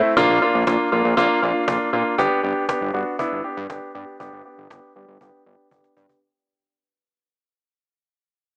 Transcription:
0.00 0.12 A3 medium
0.00 0.12 C4 medium
0.00 0.12 E4 medium
0.17 0.27 A#1 loud
0.17 0.37 A#3 loud
0.17 0.37 D4 loud
0.17 0.37 F4 loud
0.17 cajon bass loud
0.30 0.40 A#1 medium
0.42 0.62 A#3 medium
0.42 0.62 D4 medium
0.42 0.62 F4 medium
0.55 0.65 A#1 loud
0.67 0.77 A#1 loud
0.67 0.87 A#3 medium
0.67 0.87 D4 medium
0.67 0.87 F4 medium
0.67 cajon bass loud
0.67 cajon slap loud
0.92 1.03 A#1 medium
0.92 1.13 A#3 medium
0.92 1.13 D4 medium
0.92 1.13 F4 medium
1.05 1.15 A#1 loud
1.17 1.28 A#1 loud
1.17 1.38 A#3 loud
1.17 1.38 D4 loud
1.17 1.38 F4 loud
1.17 cajon bass loud
1.42 1.53 A#1 loud
1.42 1.63 A#3 medium
1.42 1.63 D4 medium
1.42 1.63 F4 medium
1.68 1.78 A#1 loud
1.68 1.88 A#3 medium
1.68 1.88 D4 medium
1.68 1.88 F4 medium
1.68 cajon bass loud
1.68 cajon slap loud
1.93 2.03 A#2 medium
1.93 2.13 A#3 medium
1.93 2.13 D4 medium
1.93 2.13 F4 medium
2.18 2.28 G1 loud
2.18 2.39 B3 loud
2.18 2.39 D4 medium
2.18 2.39 G4 loud
2.18 cajon bass loud
2.43 2.54 G1 loud
2.43 2.64 B3 medium
2.43 2.64 D4 medium
2.43 2.64 G4 medium
2.69 2.89 B3 medium
2.69 2.89 D4 medium
2.69 2.89 G4 medium
2.69 cajon bass loud
2.69 cajon slap loud
2.81 2.92 G1 loud
2.94 3.04 G1 medium
2.94 3.14 B3 medium
2.94 3.14 D4 medium
2.94 3.14 F#4 medium
3.19 3.39 B3 loud
3.19 3.39 D4 loud
3.19 3.39 E4 loud
3.19 cajon bass loud
3.32 3.42 G1 medium
3.44 3.65 B3 medium
3.44 3.65 D4 medium
3.44 3.65 G4 medium
3.57 3.67 G2 loud
3.69 3.80 G1 loud
3.69 3.90 B3 medium
3.69 3.90 D4 medium
3.69 3.90 G4 medium
3.69 cajon bass loud
3.69 cajon slap loud
3.95 4.05 G2 loud
3.95 4.15 B3 medium
3.95 4.15 D4 medium
3.95 4.15 G4 medium
4.20 4.30 G1 loud
4.20 4.40 B3 loud
4.20 4.40 D4 medium
4.20 4.40 G4 loud
4.20 cajon bass loud
4.33 4.43 G1 loud
4.45 4.66 B3 medium
4.45 4.66 D4 medium
4.45 4.66 G4 medium
4.58 4.68 G1 loud
4.70 4.81 G1 loud
4.70 4.91 B3 medium
4.70 4.91 D4 medium
4.70 4.91 G4 medium
4.70 cajon bass loud
4.70 cajon slap loud
4.96 5.06 G1 medium
4.96 5.16 B3 medium
4.96 5.16 D4 medium
4.96 5.16 G4 medium
5.08 5.18 G1 medium
5.21 5.31 G1 loud
5.21 5.41 B3 loud
5.21 5.41 D4 medium
5.21 5.41 G4 loud
5.21 cajon bass loud
5.46 5.56 G1 loud
5.46 5.66 B3 medium
5.46 5.66 D4 medium
5.46 5.66 G4 medium
5.71 5.81 G1 loud
5.71 5.92 B3 medium
5.71 5.92 D4 medium
5.71 5.92 G4 medium
5.71 cajon bass loud
5.71 cajon slap medium
5.84 cajon slap medium
5.96 6.07 G2 medium
5.96 6.17 B3 medium
5.96 6.17 D4 medium
5.96 6.17 G4 medium
5.96 cajon bass medium
6.09 cajon bass medium

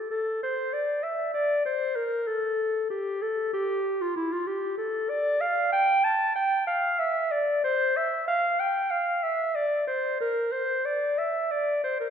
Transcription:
0.00 0.10 A4 medium
0.11 0.41 A4 medium
0.43 0.75 C5 medium
0.73 1.05 D5 medium
1.03 1.33 E5 medium
1.34 1.64 D5 medium
1.65 1.97 C5 medium
1.96 2.29 A#4 medium
2.27 2.90 A4 medium
2.90 3.23 G4 medium
3.22 3.53 A4 loud
3.54 4.03 G4 medium
4.01 4.15 F4 medium
4.16 4.34 E4 medium
4.32 4.48 F4 medium
4.47 4.77 G4 medium
4.77 5.11 A4 medium
5.10 5.42 D5 loud
5.41 5.72 F5 loud
5.72 6.06 G5 loud
6.04 6.35 A5 loud
6.36 6.66 G5 medium
6.67 7.01 F5 loud
6.99 7.33 E5 loud
7.31 7.63 D5 medium
7.64 7.98 C5 loud
7.96 8.27 E5 medium
8.28 8.61 F5 loud
8.60 8.92 G5 medium
8.91 9.25 F5 loud
9.23 9.57 E5 loud
9.55 9.87 D5 medium
9.87 10.20 C5 medium
10.21 10.54 A#4 loud
10.52 10.87 C5 medium
10.85 11.20 D5 loud
11.18 11.52 E5 medium
11.51 11.83 D5 medium
11.84 12.00 C5 medium
12.00 12.08 A#4 medium

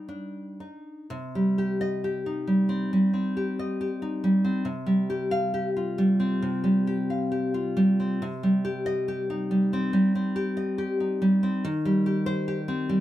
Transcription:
0.00 0.60 G3 soft
0.00 0.59 D#4 soft
0.09 1.11 D4 soft
0.60 1.11 D#4 soft
1.10 2.88 C3 medium
1.35 2.26 G3 medium
1.58 2.03 G4 medium
1.81 2.17 D#5 medium
2.04 3.36 G4 medium
2.26 3.60 D#4 medium
2.47 2.92 G3 medium
2.69 3.12 C4 soft
2.93 4.23 G3 medium
3.13 4.43 C4 soft
3.37 3.79 G4 medium
3.59 4.67 D#5 medium
3.81 4.67 G4 medium
4.02 4.67 D#4 medium
4.24 4.67 G3 medium
4.44 4.66 C4 medium
4.65 6.40 C3 medium
4.86 5.97 G3 medium
5.10 5.53 G4 medium
5.31 5.68 F5 medium
5.54 6.86 G4 medium
5.77 7.11 F4 medium
5.98 6.63 G3 medium
6.20 7.55 C4 medium
6.42 8.19 C3 medium
6.64 7.75 G3 medium
6.87 7.30 G4 medium
7.10 8.24 F5 medium
7.32 8.24 G4 medium
7.54 8.24 F4 medium
7.77 8.23 G3 medium
8.00 8.24 C4 medium
8.22 9.89 C3 medium
8.43 9.50 G3 medium
8.65 9.07 G4 medium
8.86 9.22 D#5 medium
9.08 10.35 G4 medium
9.30 10.57 D#4 medium
9.51 9.92 G3 medium
9.73 10.14 C4 medium
9.93 11.20 G3 medium
10.15 11.42 C4 medium
10.36 10.77 G4 medium
10.57 11.63 D#5 medium
10.78 11.63 G4 medium
11.00 11.64 D#4 medium
11.22 11.64 G3 medium
11.43 11.64 C4 medium
11.65 13.00 D#3 medium
11.85 12.88 G3 medium
12.06 12.47 G4 medium
12.26 12.60 C5 loud
12.48 13.00 G4 medium
12.68 13.00 C4 medium
12.89 13.00 G3 medium

